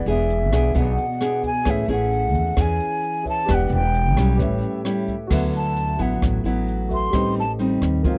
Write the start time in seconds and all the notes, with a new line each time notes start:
Already playing: E3 G#4 B4 D5 F#5
0.06 E1 B3 D4 G#4 E5, closed hi-hat
0.30 closed hi-hat
0.52 B1 B3 D4 G#4, kick, cross-stick, closed hi-hat
0.74 B1 B2 B3 D4 G#4, kick, closed hi-hat
0.79 F#5
0.98 closed hi-hat
1.21 B3 D4 G#4, cross-stick, closed hi-hat
1.43 G#5, kick, closed hi-hat
1.64 A1 A3 C#4 E4 G#4 B4 C#5, kick, cross-stick, closed hi-hat
1.69 E5
1.88 A1 C#4 E4 G#4, closed hi-hat
1.92 F#5
2.12 closed hi-hat
2.34 E2, kick, closed hi-hat
2.57 E2 E3 C#4 E4 G#4, kick, cross-stick, closed hi-hat
2.61 G#5
2.80 closed hi-hat
3.03 closed hi-hat
3.23 G#4 B4 C#5 E5, kick, closed hi-hat
3.29 A5
3.45 E1 E3 B3 D4 G4 B4 D5, kick, cross-stick, closed hi-hat
3.49 G4 F#6
3.54 F#5
3.70 E1, closed hi-hat
3.75 G5
3.94 closed hi-hat
4.17 B1 G3 C#4 E4, kick, cross-stick, closed hi-hat
4.36 A1 A2 G4 B4, closed hi-hat
4.40 C#5 E5, kick
4.62 closed hi-hat
4.85 G3 C#4 E4, cross-stick, closed hi-hat
5.08 kick, closed hi-hat
5.27 D2 D3 F#3 F#4 A4, kick, cross-stick, crash
5.31 B3 E4 B4 E5
5.54 A5, closed hi-hat
5.76 closed hi-hat
5.99 A1 F#3 B3 E4 F#5, kick, closed hi-hat
6.22 A1 A2, kick, cross-stick, closed hi-hat
6.44 A1 F#3 B3 E4, closed hi-hat
6.68 closed hi-hat
6.89 F#4 A4 B4 E5, kick, closed hi-hat
6.94 C6
7.10 A1 A2 G3 G4 B4 C5, kick, cross-stick, closed hi-hat
7.14 C4 D#4 D#5
7.36 A5, closed hi-hat
7.59 G3 C4 D#4, closed hi-hat
7.82 D#2, kick, cross-stick, closed hi-hat
8.03 G#1 G#2 F#3 C4 F4 A#4 C5, kick, closed hi-hat
8.08 F5